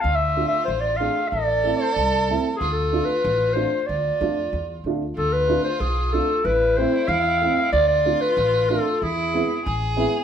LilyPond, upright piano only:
\new Staff \with { instrumentName = "Upright piano" } { \time 2/4 \tempo 4 = 94 r8 <a d' f'>16 r8. <a d' gis'>16 r16 | r8 <a c' e'>16 r8. <a c' e'>16 r16 | r8 <a d' f'>16 r8. <a d' f'>16 r16 | r8 <a d' f'>16 r8. <a d' f'>16 r16 |
r8 <a d' f'>16 r8. <a d' f'>16 r16 | r8 <a c' e'>16 r8. <a c' e'>16 r16 | r8 <a d' f'>16 r8. <a d' f'>16 r16 | r8 <gis b e'>16 r8. <gis b e'>16 r16 | }